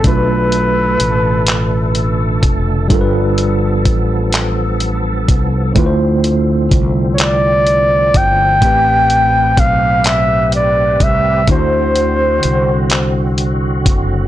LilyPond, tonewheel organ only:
\new Staff \with { instrumentName = "Tonewheel organ" } { \time 6/8 \key d \dorian \tempo 4. = 42 <d a a'>2. | <f b a'>2. | <d f c'>2. | <c' g' b'>2. |
<d c' fis'>2. | }